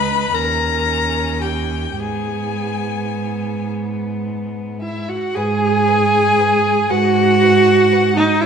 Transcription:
Already playing: C#2 D#4 B4 B5
0.34 D#2 C#4 A#4 A#5
1.42 G4 G5
1.99 G#2 B3 G#4 G#5
4.81 E4 E5
5.09 F#4 F#5
5.35 G#2 G#4 B4 G#5
5.88 B4
6.38 B4
6.89 G#2 F#4 B4 F#5
7.41 B4
7.92 B4
8.16 D#4 D#5
8.41 G#2 E4 C#5 E5

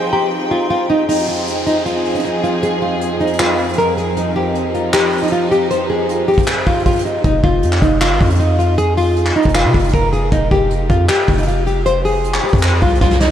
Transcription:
Already playing: F3 C4 D#4 G#4 G5 C6
0.12 G4 A#5
0.51 F4 C6
0.70 F4
0.90 D#4
1.09 F2 F3 C4 D#4 G#4, closed hi-hat, downlifter
1.28 F4
1.47 closed hi-hat
1.67 D#4, closed hi-hat
1.86 F4, closed hi-hat
2.05 closed hi-hat
2.10 closed hi-hat
2.15 C#4, closed hi-hat
2.19 closed hi-hat
2.24 D#4, closed hi-hat
2.44 F4, closed hi-hat
2.63 G#4, closed hi-hat
2.82 F4
3.01 closed hi-hat
3.20 D#4, closed hi-hat
3.27 closed hi-hat
3.33 closed hi-hat
3.40 F4, clap, closed hi-hat
3.59 closed hi-hat
3.64 closed hi-hat
3.68 closed hi-hat
3.73 closed hi-hat
3.78 A#4, closed hi-hat
3.97 G#4, closed hi-hat
4.17 F3 D#4, closed hi-hat
4.36 G4
4.55 closed hi-hat
4.74 F4, closed hi-hat
4.93 G4, clap, closed hi-hat
5.13 closed hi-hat
5.18 closed hi-hat
5.22 D#4, closed hi-hat
5.27 closed hi-hat
5.32 F4
5.51 G4, closed hi-hat
5.70 C5, closed hi-hat
5.90 G#4
6.09 closed hi-hat
6.28 G4, closed hi-hat
6.33 closed hi-hat
6.38 kick, closed hi-hat
6.43 closed hi-hat
6.47 clap, closed hi-hat
6.67 F4, kick, closed hi-hat
6.73 closed hi-hat
6.79 closed hi-hat
6.86 F4, kick, closed hi-hat
6.91 closed hi-hat
6.92 closed hi-hat
6.96 closed hi-hat
6.99 closed hi-hat
7.00 closed hi-hat
7.05 D#4, closed hi-hat
7.24 F1 D#4, kick, closed hi-hat
7.44 F1 F4, kick
7.63 F2, closed hi-hat
7.72 clap
7.82 F1 D#4, kick, closed hi-hat
8.01 F4, clap, closed hi-hat
8.11 G1
8.21 F2, kick, closed hi-hat
8.25 closed hi-hat
8.30 C#4, closed hi-hat
8.35 closed hi-hat
8.40 D#4, closed hi-hat
8.59 F4, closed hi-hat
8.78 G#4, closed hi-hat
8.97 F4, open hi-hat
9.16 closed hi-hat
9.26 clap
9.36 D#4, closed hi-hat
9.42 F1, kick, closed hi-hat
9.49 closed hi-hat
9.55 F4, clap, closed hi-hat
9.65 C3
9.74 F1, kick, closed hi-hat
9.79 closed hi-hat
9.84 closed hi-hat
9.89 closed hi-hat
9.94 F1 A#4, kick, closed hi-hat
10.13 G#4, closed hi-hat
10.32 F1 D#4, kick, closed hi-hat
10.51 F1 G4, kick
10.70 closed hi-hat
10.90 F2 F4, kick, closed hi-hat
11.09 G4, clap, closed hi-hat
11.28 F1, kick, closed hi-hat
11.33 closed hi-hat
11.38 D#4, closed hi-hat
11.43 closed hi-hat
11.47 F4, closed hi-hat
11.67 G4, closed hi-hat
11.86 C5, closed hi-hat
12.05 G#4, open hi-hat
12.24 closed hi-hat
12.34 clap
12.44 G4, closed hi-hat
12.48 closed hi-hat
12.53 F2, kick, closed hi-hat
12.58 closed hi-hat
12.63 clap, closed hi-hat
12.82 C2 F4, kick, closed hi-hat
12.88 closed hi-hat
12.95 closed hi-hat
13.01 C2 F4, kick, snare
13.11 snare
13.20 D#4, snare

